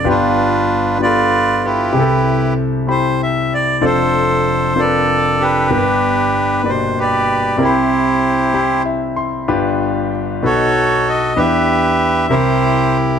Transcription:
<<
  \new Staff \with { instrumentName = "Accordion" } { \time 6/8 \key c \major \tempo 4. = 64 << { b'4. d''4 b'8~ | b'4 r8 c''8 e''8 d''8 | c''4. d''4 b'8~ | b'4. c''8 d''4 |
c''2 r4 | r4. des''4 dis''8 | e''4. c''4 r8 | } \\ { <d' f'>4. <f' b'>4 <e' g'>8~ | <e' g'>4 r2 | a'4. a'4 <d' g'>8~ | <d' g'>4. r8 <g' b'>4 |
<e' g'>2 r4 | r4. <fis' a'>4. | <g' b'>4. <e' g'>4. | } >> }
  \new Staff \with { instrumentName = "Grand piano" } { \time 6/8 \key c \major << { r2. | r2. | r2. | r2. |
r2 e''8 c'''8 | r2. | r2. | } \\ { <b d' f' g'>4 r8 <b d' f' g' a'>4 r8 | <c' e' g' aes' a'>4 r8 <c' e' g' b''>4 r8 | <c' d' f' a'>4 r8 <c' d' f' bes' b'>4 r8 | <b d' g' bes' b'>4 r8 <b, bes d' g' d''>4 r8 |
<c' e' g' bes' b''>4 r8 <c' e' g' b''>4 r8 | <d' f' g' b'>4 r8 <dis' fis' a' b'>4 r8 | <d' e' g' b'>4 r8 <c' e' g' bes'>4 r8 | } >> }
  \new Staff \with { instrumentName = "Grand piano" } { \clef bass \time 6/8 \key c \major <g,, g,>2. | <c, c>2. | <f,, f,>2. | <g,, g,>2. |
<c, c>2. | <g,, g,>4. <b,, b,>4. | <e, e>4. <c, c>4. | }
>>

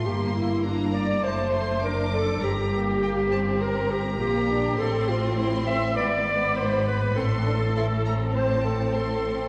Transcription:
<<
  \new Staff \with { instrumentName = "Violin section" } { \time 4/4 \key g \dorian \tempo 4 = 101 c'''4 bes''4 a''8 c'''8 d'''4 | bes''8 bes''8 g''8 a''8 bes''2 | c'''4 c'''4 b''8 b''4. | c'''4 c'''8 bes''8 a''4 c'''4 | }
  \new Staff \with { instrumentName = "Clarinet" } { \time 4/4 \key g \dorian g'8 e'8 d'8 d''8 c''8 r8 bes'8 a'8 | g'2 bes'8 g'8 g'4 | a'8 f'8 e'8 e''8 d''4 c''8 b'8 | a'4. r8 c''8 a'8 a'4 | }
  \new Staff \with { instrumentName = "Viola section" } { \time 4/4 \key g \dorian g'8 e'8 d'8 d''8 c''4 bes'8 a'8 | g'2 bes'8 g'8 g'4 | a'8 f'8 e'8 e''8 d''4 c''8 b'8 | a'2 c''8 a'8 a'4 | }
  \new Staff \with { instrumentName = "Violin section" } { \time 4/4 \key g \dorian bes4 bes4 a4 d'4 | c'8 bes8 bes8 c'4. bes8 d'8 | c'2 b8 b4. | c'8 d'8 e'8 c'2~ c'8 | }
  \new Staff \with { instrumentName = "Cello section" } { \clef bass \time 4/4 \key g \dorian g,2 fis,2 | g,2. bes,4 | a,2 gis,2 | a,1 | }
  \new Staff \with { instrumentName = "Double bass section" } { \clef bass \time 4/4 \key g \dorian g,,2 fis,,2 | g,,2. bes,,4 | a,,2 gis,,2 | a,,1 | }
>>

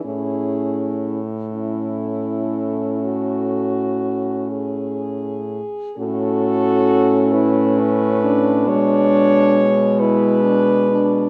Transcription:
<<
  \new Staff \with { instrumentName = "French horn" } { \time 12/8 \key a \major \tempo 4. = 43 gis'4 r8 a'2. r4. | a'4. b'4. cis''4. b'4. | }
  \new Staff \with { instrumentName = "French horn" } { \time 12/8 \key a \major e'4 r8 e'4. fis'4. gis'4. | fis'4. e'8 cis'8 d'2 e'8 d'8 d'8 | }
  \new Staff \with { instrumentName = "French horn" } { \time 12/8 \key a \major cis'4 r8 cis'1 r8 | cis'2. gis2. | }
  \new Staff \with { instrumentName = "French horn" } { \clef bass \time 12/8 \key a \major a,1~ a,4. r8 | a,2. b,2. | }
>>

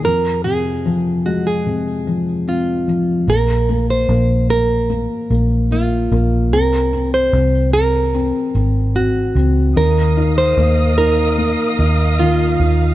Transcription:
<<
  \new Staff \with { instrumentName = "String section" } { \time 4/4 \key aes \mixolydian \tempo 4 = 74 r1 | r1 | r1 | <bes' ees'' f'' ees'''>1 | }
  \new Staff \with { instrumentName = "Nylon-string guitar" } { \time 4/4 \key aes \mixolydian bes'8 aes'4 ges'16 aes'4~ aes'16 f'4 | bes'8. c''8. bes'4. f'4 | bes'8. c''8. bes'4. ges'4 | bes'8. c''8. bes'4. f'4 | }
  \new Staff \with { instrumentName = "Felt piano" } { \time 4/4 \key aes \mixolydian f,8 c8 f8 aes8 c8 f8 c'8 f8 | bes8 bes8 bes8 bes8 bes8 bes8 bes8 bes8 | c'8 c'8 c'8 c'8 c'8 c'8 c'8 c'8 | ees8 ees'8 bes8 ees'8 bes8 ees'8 ees8 ees'8 | }
  \new Staff \with { instrumentName = "Fingered electric bass" } { \clef bass \time 4/4 \key aes \mixolydian r1 | bes,,4 bes,,4~ bes,,16 r16 bes,,4 bes,,8 | c,4 c,4~ c,16 r16 aes,,4 des,8 | ees,4 ees,4~ ees,16 r16 ees,4 ees,8 | }
>>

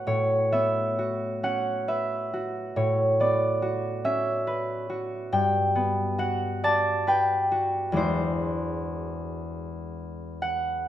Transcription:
\new Staff \with { instrumentName = "Harp" } { \time 6/8 \key a \major \tempo 4. = 45 << { <cis'' fis''>8 e''4 fis''8 e''4 | cis''8 d''4 e''4. | g''4 fis''8 a''8 g''4 | bis'2~ bis'8 fis''8 | } \\ { <a, b fis' b'>8 b8 fis'8 cis'8 b'8 fis'8 | a,8 b8 fis'8 cis'8 b'8 fis'8 | g,8 b8 fis'8 d''8 b'8 fis'8 | <e, gis d' e'>2. | } >> }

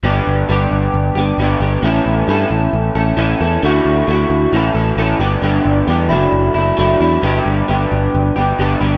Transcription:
<<
  \new Staff \with { instrumentName = "Clean electric guitar" } { \time 4/4 \key g \lydian \tempo 4 = 134 <g, d g b d' g'>4 <g b d' g'>4. <g b d' g'>8 <g, d g b d' g'>8 <g b d' g'>8 | <a, e a cis' a'>4 <e a cis' a'>4. <a cis' a'>8 <a, e a cis' a'>8 <a cis' a'>8 | <d a e' fis'>4 <d a e' fis'>4 <a, e a cis' a'>8 <a cis' a'>8 <a, e a cis' a'>8 <g, d g b d' g'>8 | <g, d g b d' g'>4 <g b d' g'>8 <fis a d' e'>4 <a d' e'>8 <fis a d' e'>8 <a d' e'>8 |
<g, d g b d' g'>4 <g b d' g'>4. <g b d' g'>8 <g, d g b d' g'>8 <g b d' g'>8 | }
  \new Staff \with { instrumentName = "Picked electric bass" } { \clef bass \time 4/4 \key g \lydian g,,8 g,,8 g,,8 g,,8 g,,8 g,,8 g,,8 g,,8 | a,,8 a,,8 g,8 a,,8 a,,8 a,,8 a,,8 e,8 | d,8 d,8 d,8 d,8 a,,8 a,,8 a,,8 g,,8 | g,,8 g,,8 e,8 fis,,8 fis,,8 fis,,8 fis,,8 e,8 |
g,,8 g,,8 g,,8 g,,8 g,,8 g,,8 g,,8 g,,8 | }
>>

